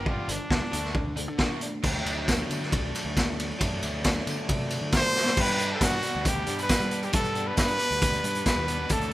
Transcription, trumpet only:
0.09 F4
0.32 D4
4.96 C5
5.41 B4
5.74 A4
5.84 F#4
6.29 G4
6.62 B4
7.04 G4
7.15 A4
7.47 B4
7.59 B4
8.47 B4
8.92 A4

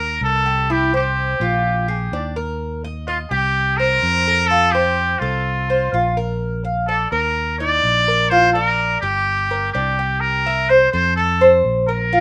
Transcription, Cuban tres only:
0.00 A#4
0.46 G4
0.70 E4
0.94 C5
1.41 F4
1.88 G#4
2.13 D4
2.36 A#4
2.84 D#5
3.08 D#5
3.31 G4
3.80 C5
4.28 A4
4.50 F4
4.75 C5
5.22 A4
5.70 C5
5.94 F4
6.17 A#4
6.65 F5
6.89 D5
7.12 A#4
7.60 D#4
8.08 A#4
8.31 F4
8.55 D5
9.03 G4
9.51 A#4
9.75 D4
9.99 G4
10.46 E5
10.70 C5
10.93 A4
11.41 C5
11.89 A#4
12.13 F4

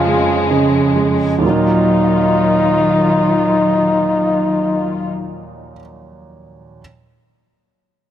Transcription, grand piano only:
Already playing: F2 C#3 F3
0.06 G#3
0.50 C#3
0.96 G#3
1.38 D#2
1.42 A#2
1.46 F#3
1.50 A#3

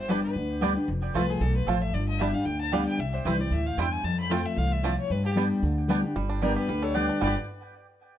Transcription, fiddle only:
Already playing: C5
0.10 B4
0.24 B4
1.16 B4
1.30 G#4
1.42 A4
1.56 B4
1.69 C5
1.82 E5
1.94 D5
2.08 D#5
2.19 E5
2.34 F5
2.45 G5
2.61 A5
2.73 F5
2.87 G5
3.00 E5
3.14 C5
3.26 B4
3.41 D5
3.53 E5
3.67 F5
3.79 G5
3.92 G#5
4.05 A5
4.19 B5
4.32 G5
4.46 E5
4.58 F5
4.73 E5
4.85 D5
4.99 C#5
5.12 B4
5.25 G4
6.43 A#4
6.57 B4
6.83 C#5
6.96 D5
7.22 D5

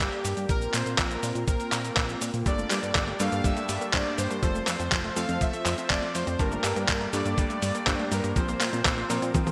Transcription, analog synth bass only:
0.00 G1
0.25 G2
0.37 G2
0.49 A#1
0.74 A#2
0.86 A#2
0.98 A#1
1.23 A#2
1.35 A#2
1.48 A#1
1.72 A#2
1.97 A#1
2.22 A#2
2.34 A#2
2.46 G1
2.71 G2
2.83 G2
2.95 G1
3.20 G2
3.32 G2
3.44 G1
3.69 G2
3.94 G1
4.18 G2
4.31 G2
4.43 F1
4.67 F2
4.80 F2
4.92 F1
5.17 F2
5.29 F2
5.41 F1
5.66 F2
5.90 F1
6.15 F2
6.27 F2
6.39 G1
6.64 G2
6.76 G2
6.89 G1
7.13 G2
7.25 G2
7.38 G1
7.62 G2
7.87 G1
8.12 G2
8.24 G2
8.36 A#1
8.61 A#2
8.73 A#2
8.85 A#1
9.10 A#2
9.22 A#2
9.35 A#1

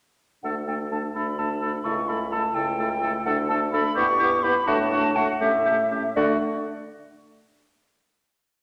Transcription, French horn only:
0.45 A3
0.68 A3
0.92 A3
1.15 A3
1.39 A3
1.62 A3
1.86 A3
2.09 A3
2.33 A3
2.56 A3
2.79 A3
3.02 A3
3.26 A3
3.50 A3
3.73 A3
3.97 B3
4.20 B3
4.44 B3
4.68 A3
4.92 A3
5.17 A3
5.41 A3
5.66 A3
5.92 A3
6.17 A3

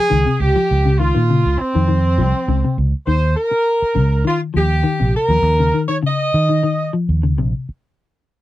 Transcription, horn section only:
Already playing: G#4
0.40 G4
0.98 F4
1.59 C4
3.06 C5
3.36 A#4
4.27 F4
4.57 G4
5.15 A#4
5.88 C#5
6.07 D#5

